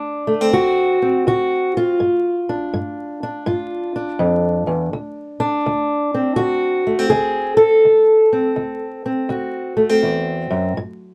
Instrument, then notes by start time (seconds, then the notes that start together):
steel-string acoustic guitar
Already playing: D2 D4
0.27 A3
0.41 C4
0.53 D2 F#4
1.02 C4
1.27 D2 F#4
1.77 F4
2.00 G2
2.49 D4
2.74 G2
3.23 D4
3.46 G2 F4
3.96 D4
4.19 F2
4.67 E2
4.93 D2
5.40 D4
5.66 D2
6.14 C4
6.36 D2 F#4
6.87 A3
6.99 C4
7.10 D2 G#4
7.57 A4
7.85 D2
8.32 C4
8.56 D2
9.06 C4
9.29 D2 F#4
9.77 A3
9.89 C4
10.03 E2
10.50 F#2
10.77 G2